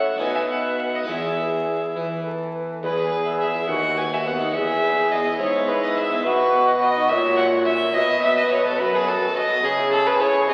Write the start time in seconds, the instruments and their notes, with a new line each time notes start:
Already playing: harpsichord A2 C#4 F#4 A4, bassoon A2, flute C#5, violin F#5
0.16 harpsichord B3 D#4 A4
0.20 bassoon B2, harpsichord B2, flute B4, violin G#5
0.35 violin E5
0.51 violin F#5
0.65 violin E5
0.80 violin F#5
0.95 violin D#5
1.03 harpsichord B3 E4 G#4
1.08 harpsichord E2, bassoon E2, flute G#4, violin E5
1.96 bassoon E3, harpsichord E3, flute B4
2.25 flute A4
2.54 flute B4
2.83 harpsichord E2, bassoon E2, flute G#4, violin B4
2.97 harpsichord G#4
3.11 harpsichord B4
3.25 harpsichord E5
3.40 harpsichord G#4, violin E5
3.54 harpsichord E4
3.68 harpsichord D#2, bassoon D#2, flute F#4, violin F#5
3.83 harpsichord F#4
3.97 harpsichord B4, violin G#5
4.11 harpsichord F#4, violin E5
4.25 harpsichord B3, violin F#5
4.39 harpsichord D#4
4.53 harpsichord E2, bassoon E2, flute G#4, violin E5
4.67 harpsichord G#4
4.83 harpsichord B4
4.96 harpsichord G#4
5.11 harpsichord B3, violin D#5
5.25 harpsichord E4
5.39 harpsichord G#2 G#4, bassoon G#2, flute E4, violin C#5
5.54 harpsichord B3
5.67 harpsichord G#4, violin B4
5.83 harpsichord B4, violin D#5
5.97 harpsichord G#4, violin E5
6.10 harpsichord B3
6.25 harpsichord B2, bassoon B2, flute F#4, violin B4
6.39 harpsichord F#4
6.53 harpsichord B4
6.67 harpsichord D#5
6.81 harpsichord F#4, violin D#5
6.96 harpsichord D#4
7.09 harpsichord A#2, bassoon A#2, flute C#5, violin E5
7.25 harpsichord F#4
7.37 harpsichord C#5, violin F#5
7.52 harpsichord F#4
7.65 harpsichord C#4, violin E5
7.81 harpsichord A#3
7.94 harpsichord B2, bassoon B2, flute B4, violin D#5
8.09 harpsichord F#4
8.22 harpsichord B3, violin E5
8.37 harpsichord B4, violin D#5
8.51 harpsichord F#4, violin C#5
8.65 harpsichord B3, violin A4
8.79 bassoon F#2, harpsichord F#2 F#4, violin B4
8.93 harpsichord B3, violin G#4
9.06 harpsichord F#4, violin A4
9.21 harpsichord B4
9.35 harpsichord F#4, violin D#5
9.49 harpsichord B3
9.63 harpsichord C#3, bassoon C#3, flute G#4, violin G#4
9.77 harpsichord E4
9.91 harpsichord G#4, violin A4
10.06 violin B4, harpsichord C#5
10.19 harpsichord E4, violin C#5
10.34 harpsichord C#4
10.47 bassoon C3, harpsichord C3, violin D#5